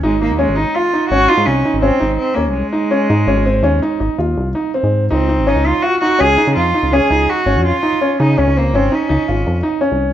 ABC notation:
X:1
M:7/4
L:1/16
Q:1/4=166
K:Abmix
V:1 name="Cello"
A,2 B,2 A,2 E2 F4 G2 F2 D4 C4 C2 B,2 | A,16 z12 | C4 E2 F2 G2 G2 A4 F4 A4 G4 | F6 E2 D2 B,2 C2 D8 z6 |]
V:2 name="Grand piano"
E2 E2 D2 E2 F2 E2 D2 E4 E2 D2 E4 D2- | D2 E2 D2 E2 D2 C2 D2 E2 E2 F4 E2 C4 | E2 E2 D2 E2 F2 E2 D2 E4 E2 D2 E4 D2- | D2 E2 D2 E2 D2 C2 D2 E2 E2 F4 E2 D4 |]
V:3 name="Analog synth bass" clef=bass
A,,,3 E,,2 A,,,2 z4 z A,,,2 z A,, C,,2 z A,,, A,,, z A,,,2 z2 E,, C,,- | C,, z4 z A,,2 A,,, A,,,3 E,,2 z2 A,,, z E,,2 C,,2 z3 A,,3 | D,,3 A,,,2 D,,2 z4 z D,,2 z D, F,,2 z D,, D,, z D,,2 z2 A,,, F,,- | F,, z4 z D,2 D,, D,,3 A,,,2 z2 D,, z A,,,2 F,,2 z3 C,,3 |]